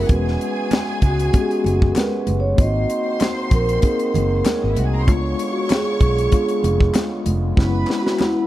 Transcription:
Already playing: C#3 E3 G#3 B3 C#4 E4 F#4
0.01 F#4 F#5
0.07 E1 G#3 B3 C#4 G#4 G#5, kick, closed hi-hat, muted conga
0.11 F#4 B4
0.28 snare
0.41 closed hi-hat
0.71 snare, clap, closed hi-hat, high conga
1.02 C#2, kick, closed hi-hat
1.06 F#4
1.19 closed hi-hat
1.33 G#3 B3 C#4 G4, kick, closed hi-hat, muted conga
1.41 G#4
1.51 closed hi-hat
1.64 F#1, closed hi-hat, muted conga
1.82 kick
1.92 A#4, clap
1.96 B4, snare, closed hi-hat, high conga
2.27 F#1, closed hi-hat, high conga
2.40 C#5
2.56 G#1 D#3 A#3 C4 D#4 F4 C5 C6, kick, closed hi-hat, muted conga
2.61 D#5
2.65 F#4
2.90 closed hi-hat
3.20 snare, clap, closed hi-hat, high conga
3.51 A#1 A#4, kick, closed hi-hat
3.69 closed hi-hat
3.81 A#3 C4 D#4 G#4, kick, closed hi-hat
3.99 closed hi-hat
4.14 F#1, closed hi-hat, muted conga, low conga
4.45 snare, clap, closed hi-hat, high conga
4.54 C#4 C#5
4.63 G#1 D#4 D#5
4.70 E4 E5
4.76 C2 F#4 F#5, closed hi-hat, high conga
4.86 G#4 G#5
4.95 A#4 A#5
5.02 C5 C6
5.06 C#2 C#3 D3 G#3 B3 D4 F4 C#5 C#6, kick, closed hi-hat, muted conga
5.39 closed hi-hat
5.51 F#4
5.70 G#4, snare, clap, closed hi-hat, high conga
6.00 B1 G#4, kick, closed hi-hat
6.18 closed hi-hat
6.31 G#3 B3 D4 F4, kick, closed hi-hat
6.49 closed hi-hat
6.64 F1, closed hi-hat, muted conga
6.80 kick
6.94 snare, clap, closed hi-hat, high conga
7.26 F1, closed hi-hat, high conga
7.56 F#1 E3 F#3 G#3 B3 C#4 E4 F#4 B4 B5, kick, snare, muted conga
7.87 snare, clap
8.02 F#4
8.07 snare
8.19 snare, clap, high conga
8.23 E4

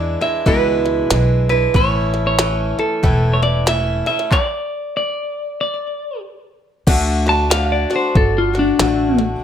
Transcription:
Already playing: E2 E3 G#3 D4 E4 D5
0.21 E3 G#3 D4 E4 E5, snare
0.46 C#2 E2 B2 E3 G#3 D4 E4 B4, kick, snare
0.86 snare
1.10 B1 E3 G#3 D4 E4, snare, hi-hat pedal
1.49 E3 G#3 D4 E4 B4, snare
1.74 A1 A2 E3 A3 C#4 E4 C#5, kick, snare
2.14 snare
2.27 C#5
2.39 E3 A3 C#4 E4, snare, hi-hat pedal
2.79 A4, snare
3.03 E1 A2 E3 A3 E4, kick, snare
3.34 C#5
3.43 D5, snare
3.66 E3 A3 C#4 E4 E5, snare, hi-hat pedal
4.06 A3 C#4 E4 E5, snare
4.19 snare
4.31 D5, kick, clap
4.97 D5
5.61 D5
6.87 D2 D3 A3 D4 F#4, kick, snare, crash
7.26 A3 D4 F#4 A5, snare
7.50 D3 A3 D4 F#4 F5, snare, hi-hat pedal
7.72 D5
7.90 A3 D4 F#4, snare
7.96 C5
8.15 G1 A4, kick, snare
8.38 F4
8.53 A3 D4 F#4, snare
8.59 D4
8.79 A1 D3 A3 D4 F#4, snare, hi-hat pedal
9.19 snare

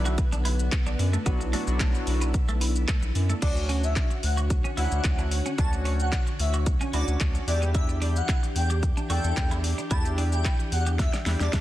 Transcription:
Already playing: B1 D3 F#3 B3 D4 E4 F#4
0.05 F#4, shaker
0.18 muted clean electric guitar stroke, kick, closed hi-hat, shaker
0.32 B1 D4, shaker
0.45 E4, open hi-hat, shaker
0.59 shaker
0.72 kick, clap, closed hi-hat, shaker
0.86 B1 D4, shaker
0.99 F#2, muted clean electric guitar stroke, open hi-hat, shaker
1.13 A3, shaker
1.26 B1 F#3 B3 D4 E4 F#4, kick, closed hi-hat, shaker
1.41 muted clean electric guitar stroke, shaker
1.53 F#3 A3 B3 D4 F#4, open hi-hat, shaker
1.67 B1 F#3 B3 D4 F#4, shaker
1.80 A3, kick, clap, closed hi-hat, shaker
1.95 muted clean electric guitar stroke, shaker
2.07 B1, open hi-hat, shaker
2.21 B3, shaker
2.34 muted clean electric guitar stroke, kick, closed hi-hat, shaker
2.49 B1 A3, shaker
2.61 B3, open hi-hat, shaker
2.76 shaker
2.88 A3, kick, clap, closed hi-hat, shaker
3.03 B1, muted clean electric guitar stroke, shaker
3.15 F#2, open hi-hat, shaker
3.30 A3, shaker
3.42 D2 D3 C#4 D4 F#4 C#5 D5, kick, closed hi-hat, crash, shaker
3.56 muted clean electric guitar stroke, shaker
3.69 C#4, open hi-hat, shaker
3.84 E5, shaker
3.96 D4, kick, clap, closed hi-hat, shaker
4.10 muted clean electric guitar stroke, shaker
4.23 D2 F#5, open hi-hat, shaker
4.37 F#4, shaker
4.50 muted clean electric guitar stroke, kick, closed hi-hat, shaker
4.64 C#4, shaker
4.77 D2 C#4 D4 E4 F#5, open hi-hat, shaker
4.92 D2, shaker
5.04 D2, kick, clap, closed hi-hat, shaker
5.19 D4, shaker
5.31 muted clean electric guitar stroke, open hi-hat, shaker
5.46 C#4, shaker
5.58 D2 C#4 D4 F#4 A5, kick, closed hi-hat, shaker
5.73 muted clean electric guitar stroke, shaker
5.85 C#4, open hi-hat, shaker
6.00 F#5, shaker
6.12 D4, kick, clap, closed hi-hat, shaker
6.27 muted clean electric guitar stroke, shaker
6.40 D2 E5, open hi-hat, shaker
6.54 F#4, shaker
6.66 muted clean electric guitar stroke, kick, closed hi-hat, shaker
6.81 C#4, shaker
6.93 D2 C#4 D4 E4 F#4 D5, open hi-hat, shaker
7.08 D2, shaker
7.20 D2 D4, kick, clap, closed hi-hat, shaker
7.35 muted clean electric guitar stroke, shaker
7.47 E2 E3 D4 E4 G4 D5, open hi-hat, shaker
7.62 B3, shaker
7.75 E4 E5, kick, closed hi-hat, shaker
7.89 muted clean electric guitar stroke, shaker
8.02 D4, open hi-hat, shaker
8.16 F#5, shaker
8.29 E4, kick, clap, closed hi-hat, shaker
8.43 muted clean electric guitar stroke, shaker
8.56 E2 G5, open hi-hat, shaker
8.70 G4, shaker
8.83 muted clean electric guitar stroke, kick, closed hi-hat, shaker
8.97 D4, shaker
9.09 E2 D4 E4 F#4 A4 G5, open hi-hat, shaker
9.24 E2, shaker
9.37 E2, kick, clap, closed hi-hat, shaker
9.51 E4, shaker
9.64 muted clean electric guitar stroke, open hi-hat, shaker
9.78 D4, shaker
9.90 E2 D4 E4 G4 A5, kick, closed hi-hat, shaker
10.05 muted clean electric guitar stroke, shaker
10.18 D4, open hi-hat, shaker
10.32 G5, shaker
10.45 E4, kick, clap, closed hi-hat, shaker
10.59 muted clean electric guitar stroke, shaker
10.72 E2 F#5, open hi-hat, shaker
10.86 G4, shaker
10.99 E5, muted clean electric guitar stroke, kick, snare, closed hi-hat, shaker
11.13 D4, snare, shaker
11.26 E2 D4 E4 G4, snare, open hi-hat, shaker
11.40 E2 D5, snare, shaker
11.53 E2 D4, kick, snare, closed hi-hat, shaker

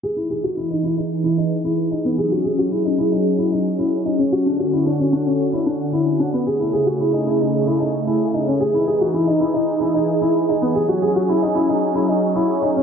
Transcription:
0.03 E3 D#4 G#4
0.17 E4
0.30 G#4
0.44 F#4
0.57 E4
0.70 D#4
0.83 E4
0.97 D#4
1.24 E4
1.38 D#4
1.65 E4
1.91 D#4
2.05 B3
2.18 F#3 C#4 G#4
2.32 F#4
2.45 G#4
2.58 F#4
2.71 E4
2.85 D#4
2.98 E4
3.12 D#4
3.38 E4
3.52 D#4
3.79 E4
4.06 D#4
4.19 C#4
4.32 D3 F#4
4.46 D4
4.59 F#4
4.73 E4
4.86 D4
4.99 C#4
5.13 D4
5.26 C#4
5.53 E4
5.66 D4
5.93 E4
6.20 D4
6.33 B3
6.47 C#3 A3 G#4
6.60 E4
6.73 G#4
6.87 F#4
7.00 E4
7.13 D#4
7.27 E4
7.40 D#4
7.67 E4
7.80 D#4
8.07 E4
8.34 D#4
8.47 C#4
8.60 E3 D#4 G#4
8.74 E4
8.87 G#4
9.01 F#4
9.14 E4
9.27 D#4
9.41 E4
9.54 D#4
9.81 E4
9.94 D#4
10.22 E4
10.49 D#4
10.62 B3
10.75 F#3 C#4 G#4
10.89 F#4
11.02 G#4
11.16 F#4
11.29 E4
11.42 D#4
11.55 E4
11.69 D#4
11.95 E4
12.09 D#4
12.36 E4
12.63 D#4
12.77 C#4

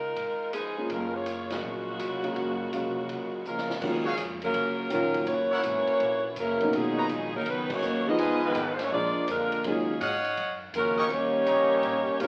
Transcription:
Already playing: C#2 G#3 D#4 F4 A#4
0.16 G#1, kick, ride
0.53 F3 B3 D#4 G#4, cross-stick, hi-hat pedal, ride
0.76 G#3 A#3 C#4 F4
0.89 F#1 G#3 C#4 F4 A#4, kick, ride
1.14 A#3 F4 G#4 C#5
1.26 hi-hat pedal, ride
1.50 A#2 C#3 F#3 G#3 A#3 F#4, snare, ride
1.62 A#1
1.99 F1, cross-stick, hi-hat pedal, ride
2.23 G#3 A#3 C#4 F5, ride
2.36 F#1, kick, ride
2.72 F1 G#3 A#3 C#4 F5, hi-hat pedal, ride
3.09 C#2, kick, ride
3.45 C#3 F3 G#3 A#3 C#4 F4 A#4, hi-hat pedal
3.58 snare
3.70 snare
3.79 D#2 A#2 C#3 D#3 F#3 G#3 A#3 F#4, kick, crash
3.83 F#3 C#4 F4 G#4
4.06 D#4 F#4 C#5 F5
4.17 F2, kick, hi-hat pedal, ride
4.42 C#3 F#3 A#3 C#4 F4 A#4, ride
4.54 C#2, kick, ride
4.89 A#1 C#3 D#3 F#3 A#3 C#4 F4 A#4, kick, hi-hat pedal, ride
5.14 ride
5.27 F#1 E3 A#3 C#4 E4 F#4 C#5, kick, ride
5.52 E4 A#4 C#5 F#5
5.63 G#1, kick, hi-hat pedal, ride
5.87 muted upright bass stroke, ride
6.00 A#1, kick, ride
6.36 F#1 C#3 E3 A#3 E4, kick, hi-hat pedal, ride
6.40 F#3 C#4 A#4
6.60 B2 F#3 A#3 C#4 D#4, ride
6.73 B1 A#2 D#3 F#3 G#3 C#4 D#4 G#4, kick, ride
6.97 D#4 B4 C#5 A#5
7.09 A#1, kick, hi-hat pedal, ride
7.34 D#3 F#3 A#3 C#4 D#4 A#4, kick
7.46 C#2 D#3 F#3 B3 C#4 D#4 B4, kick, ride
7.70 F#3 A#3 C#4 D#4 F#4 C#5, kick, crash
7.82 D#2, hi-hat pedal
8.06 F3 G#3 B3 D#4 F4 G#4 D#5
8.18 F2 F4 B4 D#5 G#5, kick, ride
8.42 D#3 G#3 B3 D#4 F4 B4
8.55 G#2, kick, hi-hat pedal, ride
8.73 C5
8.79 A#3 C#4 D#4 F#4 C#5, snare, ride
8.92 A#2 F3 G#3 A#3 D4 F4 G#4 D5, kick
9.16 muted upright bass stroke
9.28 F2 D3 F3 G#3 A#3 D4 F4 A#4, kick, hi-hat pedal, ride
9.52 ride
9.64 D#2 A#2 C#3 F#3 G#3 A#3 C#4 D#4 F4 G#4, kick, ride
10.01 G#2 C#5 D#5 F5 F#5, kick, hi-hat pedal, ride
10.25 ride
10.37 F#2, kick, ride
10.74 F2 C#3 D#3 A#3 C#4 F4 F#4 A#4, kick, hi-hat pedal, ride
10.98 G4 C#5 D#5 C#6, kick
11.10 D#2 G3 A#3 C#4 D#4 G4 C#5, kick, ride
11.46 C#2 G4 C#5 D#5 A#5, kick, hi-hat pedal, ride
11.83 A#1, kick, ride
12.08 muted upright bass stroke
12.20 G1 C#3 G3 A#3 C#4 D#4 F4 A#4, kick, hi-hat pedal, ride

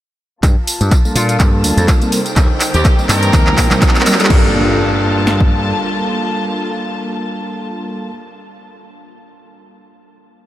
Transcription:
0.43 G2 A#3 F4 A5, kick, clap, closed hi-hat, tambourine, riser
0.67 open hi-hat, tambourine
0.81 G2, closed hi-hat, tambourine
0.91 kick, clap, closed hi-hat, tambourine
1.05 G3 A#3 D4 F4 A4, tambourine
1.15 A#2 F4, open hi-hat, tambourine
1.29 F4, closed hi-hat, tambourine
1.40 G2 G3 A#3 A4, kick, clap, closed hi-hat, tambourine
1.53 G3 A#3 D4 F4 A4
1.64 D2, open hi-hat, tambourine
1.77 F2, closed hi-hat, tambourine
1.88 kick, clap, closed hi-hat, tambourine
2.01 G3 A#3 C4 D#4 A#4, closed hi-hat, tambourine
2.12 D#4 C5 G5, open hi-hat, tambourine
2.26 closed hi-hat, tambourine
2.36 D#2, kick, clap, closed hi-hat, tambourine
2.60 clap, open hi-hat, tambourine
2.74 D#2 G4, closed hi-hat, tambourine
2.85 G4, kick, clap, closed hi-hat, tambourine
2.98 G3 A#3 C4 D#4 A#4, tambourine
3.09 G2 A#4, clap, open hi-hat, tambourine
3.23 closed hi-hat, tambourine
3.33 D#2 G3 A#3 C4 D#4 A#4, kick, clap, closed hi-hat, tambourine
3.47 clap
3.57 A#1 G3 A#3 C4 D#4, kick, clap, open hi-hat, tambourine
3.71 C2, clap, closed hi-hat, tambourine
3.82 kick, clap, closed hi-hat, tambourine
3.89 clap
3.95 clap, closed hi-hat, tambourine
4.01 clap
4.05 G3 A#3 C4 D#4 A#4, clap, open hi-hat, tambourine
4.13 clap
4.19 G3 A#3 D4 F4 A4, clap, closed hi-hat, tambourine
4.25 clap
4.29 G2 A#3 D4 F4 A4 A5, kick, crash, impact
5.27 snare
5.41 kick

